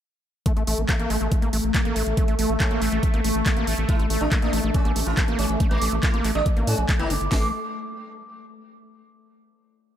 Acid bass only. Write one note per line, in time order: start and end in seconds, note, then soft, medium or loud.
0.46 0.53 A3 medium
0.57 0.63 A3 medium
0.67 0.80 A3 medium
0.78 0.82 A#3 medium
0.89 0.96 A#3 medium
0.99 1.10 A#3 loud
1.10 1.17 A3 medium
1.21 1.28 A3 medium
1.42 1.49 A#3 medium
1.53 1.57 A3 medium
1.74 1.81 A#3 medium
1.85 1.95 A#3 loud
1.96 2.03 A3 medium
2.17 2.24 A3 medium
2.28 2.35 A3 medium
2.39 2.51 A3 medium
2.49 2.54 A#3 medium
2.60 2.67 A#3 medium
2.71 2.81 A#3 loud
2.82 2.88 A3 medium
2.92 2.99 A3 medium
3.14 3.21 A#3 medium
3.24 3.29 A3 medium
3.46 3.53 A#3 medium
3.57 3.67 A#3 loud
3.67 3.74 A3 medium
3.89 3.96 A3 medium
3.99 4.06 A3 medium
4.10 4.22 A3 medium
4.21 4.25 A#3 medium
4.32 4.38 A#3 medium
4.42 4.52 A#3 loud
4.53 4.60 A3 medium
4.64 4.71 A3 medium
4.85 4.92 A#3 medium
4.96 5.00 A3 medium
5.17 5.24 A#3 medium
5.28 5.38 A#3 loud
5.39 5.46 A3 medium
5.60 5.67 A3 medium
5.71 5.78 A3 medium
5.82 5.94 A3 medium
5.92 5.96 A#3 medium
6.03 6.10 A#3 medium
6.14 6.24 A#3 loud
6.24 6.31 A3 medium
6.35 6.42 A3 medium
6.57 6.69 A#3 medium
6.67 6.77 A3 medium
6.89 6.93 A3 loud
6.99 7.12 E4 loud
7.10 7.14 C#4 medium
7.32 7.52 A3 loud